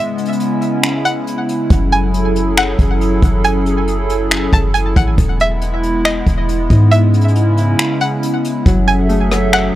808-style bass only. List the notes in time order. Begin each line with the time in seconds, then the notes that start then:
1.70 F#1
2.79 F#1
3.22 F#1
4.53 F#1
4.96 A1
5.18 E1
6.27 E1
6.70 G#2
8.66 F#1